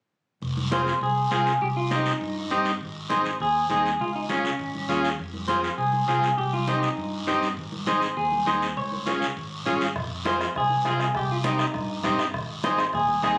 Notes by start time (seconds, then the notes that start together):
0.42 F1, high conga, long guiro
0.57 high conga
0.71 C4 F4 G#4 C5, high conga, short guiro
0.87 short guiro
1.01 C2 G#4, high conga, long guiro
1.31 C2 C4 F4 G#4, high conga, short guiro
1.46 short guiro
1.61 C2 G4, high conga, long guiro
1.77 F4
1.91 C4 D#4 G4, high conga, short guiro
2.06 short guiro
2.21 G2, high conga, long guiro
2.51 G2 C4 D#4 G4, high conga, short guiro
2.65 short guiro
2.81 G#1, high conga, long guiro
3.09 C4 D#4 G#4 C5, high conga, short guiro
3.25 short guiro
3.40 D#2 G#4, high conga, long guiro
3.70 D#2 C4 D#4 G#4, high conga, short guiro
3.86 short guiro
4.00 C#2 F4, high conga, long guiro
4.15 D#4
4.29 C#4 F4 G#4, high conga, short guiro
4.45 short guiro
4.59 G#1, high conga, long guiro
4.75 high conga
4.89 D#2 C#4 F4 G#4, high conga, short guiro
5.05 short guiro
5.19 F2, high conga, long guiro
5.34 high conga
5.48 C4 F4 G#4 C5, high conga, short guiro
5.64 short guiro
5.78 C2 G#4, high conga, long guiro
5.93 high conga
6.08 C2 C4 F4 G#4, high conga, short guiro
6.23 short guiro
6.38 C2 G4, high conga, long guiro
6.53 F4, high conga
6.67 C4 D#4 G4, high conga, short guiro
6.83 short guiro
6.97 G2, high conga, long guiro
7.27 G2 C4 D#4 G4, high conga, short guiro
7.42 short guiro
7.57 G#1, high conga, long guiro
7.72 high conga
7.87 C4 D#4 G#4 C5, high conga, short guiro
8.02 short guiro
8.17 D#2 G#4, high conga, long guiro
8.32 high conga
8.46 D#2 C4 D#4 G#4 C5, high conga, short guiro
8.62 short guiro
8.77 C#2 C#5, high conga, long guiro
8.92 high conga
9.06 C#4 F4 G#4, high conga, short guiro
9.22 short guiro
9.37 G#1, high conga, long guiro
9.66 G#1 C#4 F4 G#4, high conga, short guiro
9.81 short guiro
9.96 F2, bombo low, bombo rim, high conga, long guiro
10.25 C4 F4 G#4 C5, bombo rim, high conga, short guiro
10.41 bombo rim, short guiro
10.55 C2 G#4, bombo low, bombo rim, high conga, long guiro
10.70 high conga
10.84 C2 C4 F4 G#4, bombo rim, high conga, short guiro
11.00 bombo rim, short guiro
11.14 C2 G4, bombo low, bombo rim, high conga, long guiro
11.32 F4
11.44 C4 D#4 G4, bombo rim, high conga, short guiro
11.59 bombo rim, short guiro
11.74 G2, bombo low, bombo rim, high conga, long guiro
12.04 G2 C4 D#4 G4, bombo low, bombo rim, high conga, short guiro
12.19 bombo rim, short guiro
12.34 G#1, bombo low, bombo rim, high conga, long guiro
12.64 C4 D#4 G#4 C5, bombo rim, high conga, short guiro
12.79 bombo rim, short guiro
12.93 D#2 G#4, bombo low, bombo rim, high conga, long guiro
13.08 high conga
13.23 D#2 C4 D#4 G#4, bombo rim, high conga, short guiro